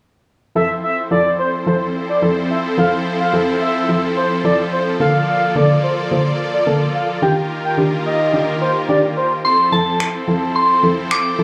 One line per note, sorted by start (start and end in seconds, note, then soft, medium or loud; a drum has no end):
0.55 1.03 F3 medium
0.55 7.18 F3 medium
0.55 4.96 C4 medium
0.55 4.96 E4 medium
0.55 1.03 E4 medium
0.55 7.18 A4 medium
0.55 1.03 A4 medium
0.55 4.96 C5 medium
0.55 0.75 E5 loud
0.84 1.02 E5 medium
1.11 1.58 F3 medium
1.11 1.58 E4 medium
1.11 1.58 A4 medium
1.11 1.30 D5 medium
1.39 1.49 C5 medium
1.66 2.14 F3 medium
1.66 2.14 E4 medium
1.66 2.14 A4 medium
1.66 1.77 C5 medium
2.09 2.18 D5 medium
2.22 2.69 F3 medium
2.22 2.69 E4 medium
2.22 2.69 A4 medium
2.50 2.60 E5 medium
2.77 3.25 F3 medium
2.77 3.25 E4 medium
2.77 3.25 A4 medium
2.77 2.88 F5 loud
3.20 3.29 F5 medium
3.33 3.80 F3 medium
3.33 3.80 E4 medium
3.33 3.81 A4 medium
3.61 4.01 E5 medium
3.89 4.36 F3 medium
3.89 4.36 E4 medium
3.89 4.36 A4 medium
4.17 4.27 C5 medium
4.44 4.92 F3 medium
4.44 4.92 E4 medium
4.44 4.92 A4 medium
4.44 4.54 D5 medium
4.72 4.82 C5 medium
5.00 5.47 D3 medium
5.00 5.47 A#3 medium
5.00 7.20 A#3 medium
5.00 9.41 F4 medium
5.00 5.47 A4 medium
5.00 7.20 D5 medium
5.00 5.19 F5 loud
5.28 5.47 F5 medium
5.55 6.03 D3 medium
5.55 6.03 A#3 medium
5.55 6.03 A4 medium
5.55 5.75 D5 medium
5.83 5.93 C5 medium
6.11 6.58 D3 medium
6.11 6.58 A#3 medium
6.11 6.58 F4 medium
6.11 6.21 C5 medium
6.54 6.63 D5 medium
6.66 7.14 D3 medium
6.66 7.14 A#3 medium
6.66 7.14 A4 medium
6.95 7.05 F5 medium
7.22 7.69 D#3 medium
7.22 9.42 D#3 medium
7.22 9.42 A#3 medium
7.22 7.69 D4 medium
7.22 9.42 G4 medium
7.22 7.70 G4 medium
7.22 9.42 A#4 medium
7.22 7.32 G5 loud
7.65 7.74 G5 medium
7.77 8.25 D#3 medium
7.77 8.25 D4 medium
7.77 8.25 G4 medium
8.06 8.46 D#5 medium
8.33 8.80 D#3 medium
8.33 8.81 D4 medium
8.33 8.81 G4 medium
8.61 8.71 C5 medium
8.89 9.36 D#3 medium
8.89 9.36 D4 medium
8.89 9.36 G4 medium
8.89 8.99 D5 medium
9.17 9.27 C5 medium
9.45 11.43 F3 medium
9.45 11.43 C4 medium
9.45 11.43 E4 medium
9.45 11.43 A4 medium
9.45 11.43 C5 medium
9.45 9.70 C6 medium
9.72 10.19 F3 medium
9.72 10.19 E4 medium
9.72 10.20 A4 medium
9.72 10.58 A5 medium
10.00 finger snap loud
10.28 10.75 F3 medium
10.28 10.75 E4 medium
10.28 10.75 A4 medium
10.56 11.07 C6 medium
10.83 11.30 F3 medium
10.83 11.30 E4 medium
10.83 11.31 A4 medium
11.11 11.43 D6 loud
11.11 finger snap loud
11.39 11.43 F3 medium
11.39 11.43 E4 medium
11.39 11.43 A4 medium